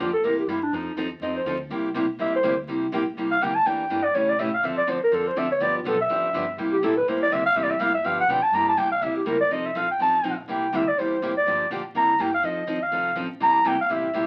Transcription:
0.00 F2 F3 A#3 D4 F4 G4
0.13 A4
0.23 E2 C3 G3 A#3 E4 G4 A#4
0.38 G4
0.47 G2 C3 G3 A#3 E4 G4
0.63 D4
0.71 F2 F3 C4 D#4 A4
0.96 D#2 F3 C4 D#4 A4
1.20 F2 F3 C4 D#4 A4 D#5
1.37 C5
1.44 D2 F3 C4 D#4 A4
1.69 C2 C3 G3 A#3 E4 G4
1.94 B1 C3 G3 A#3 E4 G4
2.19 A#1 C3 G3 A#3 E4 G4 E5
2.32 C5, muted upright bass stroke
2.43 D2 C3 G3 A#3 E4 G4
2.67 C2 C3 G3 A#3 E4 G4
2.92 A#1 C3 G3 A#3 E4 G4
3.15 C2 C3 G3 A#3 E4 G4
3.31 F5
3.40 D2 C3 G3 A#3 E4 G4 G5
3.55 A5
3.65 E2 E3 A#3 D4 G4 G5
3.90 G2 E3 A#3 D4 G4
4.04 D5
4.15 A2 C#3 E3 A3 C#4 G4 C#5
4.29 D5
4.38 A#2 C#3 E3 A3 C#4 G4 E5
4.54 F5
4.63 D2 D3 F3 C4 D4 A4 E5
4.76 D5, muted upright bass stroke
4.87 E2 D3 F3 C4 D4 A4 C5
5.01 A#4, muted upright bass stroke
5.11 F2 D3 F3 C4 D4 A4
5.27 C5
5.36 D2 D3 F3 C4 D4 A4 E5
5.52 C#5
5.60 G1 D3 F3 B3 D4 G4 D5
5.77 F4
5.84 B1 D3 F3 B3 D4 G4 A4
6.01 E5
6.09 A1 D3 F3 B3 D4 G4
6.33 G1 D3 F3 B3 D4 G4
6.57 C2 C3 G3 A#3 E4 G4
6.72 G4
6.81 A#1 C3 G3 A#3 E4 G4 A4
6.97 B4
7.08 C3 G3 A#3 E4 G4 C5
7.22 D5
7.30 D2 C3 G3 A#3 E4 G4 E5
7.46 F5
7.54 E2 C3 G3 A#3 E4 G4 E5
7.63 D5
7.71 E5
7.79 F2 C3 G3 A#3 E4 G4 F5
7.94 E5
8.03 G2 D3 F3 B3 D4 G4 F5
8.20 F#5
8.27 B2 D3 F3 B3 D4 G4 G5
8.41 A5, muted upright bass stroke
8.51 G2 C3 G3 A#3 E4 G4 A#5
8.68 A5
8.76 C2 C3 G3 A#3 E4 G4 G5
8.91 F5
9.00 D2 C3 G3 A#3 E4 G4 E5
9.14 G4, muted upright bass stroke
9.25 C#2 C3 G3 A#3 E4 G4 A#4
9.41 D5
9.49 C2 F3 C4 D#4 A4 D#5
9.66 E5
9.74 A#1 F3 C4 D#4 A4 F5
9.91 G5
9.99 A1 F3 C4 D#4 A4 A5
10.23 A#1 F3 C4 D#4 A4
10.48 C2 C3 G3 A#3 E4 G4 G5
10.72 D2 C3 G3 A#3 E4 G4 E5
10.88 D5
10.97 E2 C3 G3 A#3 E4 G4 C5
11.22 F2 C3 G3 A#3 E4 G4
11.37 D5
11.46 G2 D3 F3 A#3 D4 G4
11.70 A#2 D3 F3 A#3 D4 G4
11.94 C3 G3 A#3 E4 G4 A#5
12.19 G2 C3 G3 A#3 E4 G4 G5
12.34 F5
12.43 F2 F3 C4 D#4 A4 D#5
12.67 D#2 F3 C4 D#4 A4
12.83 F5
12.92 C2 F3 C4 D#4 A4
13.15 A1 F3 C4 D#4 A4
13.40 G1 C3 G3 A#3 E4 G4 A#5
13.54 muted upright bass stroke
13.64 C2 C3 G3 A#3 E4 G4 G5
13.79 F5, muted upright bass stroke
13.89 A1 C3 G3 A#3 E4 G4 E5
14.13 A#1 C3 G3 A#3 E4 G4

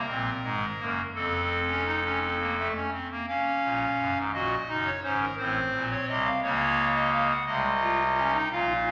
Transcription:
Already playing: A#4
0.08 A#1 A#2 C4
0.43 G#1 G#2 G#3
0.79 F#1 F#2 A#3
1.15 F1 F2 C4 A4
1.68 C#4
1.86 D#4
2.03 C#4
2.22 C4
2.40 A#3
2.58 A3
2.75 C#4
2.93 C4
3.10 A#3
3.28 C#4 F5
3.63 A#1 A#2
3.98 F#1 F#2
4.16 G#1 G#2
4.33 A#1 A#2 F#4 D#5
4.68 F#1 F#2 D#4
4.85 C#5
5.03 G#1 G#2 C#4 C5
5.21 A#4
5.38 A1 A2 C4 C5
5.73 A#1 A#2
5.91 C#5
6.08 C2 C3 D#5
6.25 F5
6.42 C#2 C#3 A#3 C#5
6.95 D#5
7.12 F5
7.30 F#5
7.46 C2 C3 G#3 D#5
7.81 F4
8.16 C#4
8.33 D#4
8.51 A#1 A#2 F4 F5
8.86 C#4

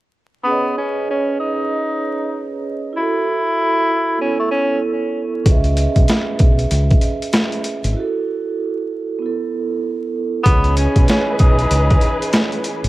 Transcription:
0.44 B3 C#4 G#4 B4
0.49 C#5 D#5
0.78 C#4
1.10 C#4
1.40 D#4
2.93 E4 F#4
2.97 E4 A4
4.19 B3 C#4 E4
4.26 A4
4.40 A3
4.51 C#4
5.44 C#2 C#4 G#4 B4, kick, closed hi-hat
5.49 D#5 E5
5.64 closed hi-hat
5.77 closed hi-hat
5.96 B1, kick, closed hi-hat
6.08 snare, closed hi-hat
6.39 B1, kick, closed hi-hat
6.59 closed hi-hat
6.71 C#2, closed hi-hat
6.91 kick, closed hi-hat
7.01 closed hi-hat
7.22 closed hi-hat
7.33 snare, closed hi-hat
7.52 closed hi-hat
7.64 closed hi-hat
7.84 G#1, closed hi-hat
7.93 E4 F#4
8.00 A4
9.18 B3 E4
9.26 A4
10.44 C#2 E3 B3 G#4 B4, kick, closed hi-hat
10.49 C#5 D#5
10.64 closed hi-hat
10.77 C#4, closed hi-hat
10.96 B1, kick, closed hi-hat
11.08 C#4, snare, closed hi-hat
11.39 B1 D#4, kick, closed hi-hat
11.59 closed hi-hat
11.71 C#2, closed hi-hat
11.90 kick, closed hi-hat
12.01 closed hi-hat
12.22 closed hi-hat
12.33 snare, closed hi-hat
12.52 closed hi-hat
12.64 closed hi-hat
12.84 G#1, closed hi-hat

